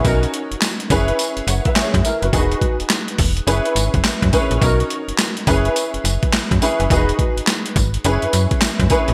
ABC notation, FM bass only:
X:1
M:4/4
L:1/16
Q:"Swing 16ths" 1/4=105
K:F#mix
V:1 name="FM bass" clef=bass
B,,,2 z F,,, z2 F,,,2 z F,,, F,,, z2 F,, z F,,, | E,,,2 z E,,, z2 E,,,2 F,,, z G,,, F,,, z F,, z A,,, | B,,,2 z F,,, z2 F,,,2 z F,,, F,,, z2 F,, z F,,, | E,,,2 z G,,, z2 G,,,2 F,,, F,, F,, z2 F,, z A,,, |]